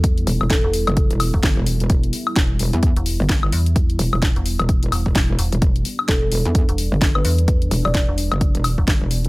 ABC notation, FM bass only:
X:1
M:4/4
L:1/16
Q:"Swing 16ths" 1/4=129
K:Em
V:1 name="FM bass" clef=bass
E,,2 z3 E,,,2 z4 E,,, z4 | z8 z E,,,2 z3 E,,2- | E,,2 z3 E,,,2 z3 E,,, z3 E,,, z | z8 z E,,,2 z3 E,,2- |
E,,2 z3 E,,,2 z4 E,,, z4 |]